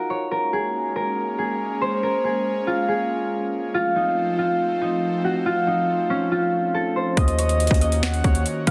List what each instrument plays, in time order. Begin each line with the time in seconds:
Already playing: harp D#4 F#4 G#4 A#4
0.10 harp C#5
0.31 analog synth pad G#3 A#3 C#4, harp A#4
0.53 harp G#4
0.96 harp A#4
1.39 harp G#4
1.81 harp C5
2.03 harp A#4
2.24 harp G#4
2.67 harp F4
2.88 harp G#4
3.74 analog synth pad F3 A3 C4, harp F4
3.96 harp D#4
4.39 harp F4
4.82 harp D#4
5.24 harp F#4
5.46 harp F4
5.67 harp D#4
6.10 harp C#4
6.31 harp F4
6.74 harp A4
6.96 harp C5
7.17 808-style bass D#2, analog synth pad D#3 A#3 C#4 F#4, harp D#5, soft synth lead D#5, kick, closed hi-hat
7.28 closed hi-hat
7.39 harp C#5, closed hi-hat
7.49 closed hi-hat
7.60 closed hi-hat
7.67 808-style bass D#2, kick, closed hi-hat
7.74 closed hi-hat
7.81 harp D#5, closed hi-hat
7.92 closed hi-hat
8.03 soft synth lead F#5, finger snap, snare, closed hi-hat
8.14 closed hi-hat
8.24 808-style bass D#2, harp C#5, kick, closed hi-hat
8.35 closed hi-hat
8.46 closed hi-hat
8.67 808-style bass D#2, harp F5, kick, closed hi-hat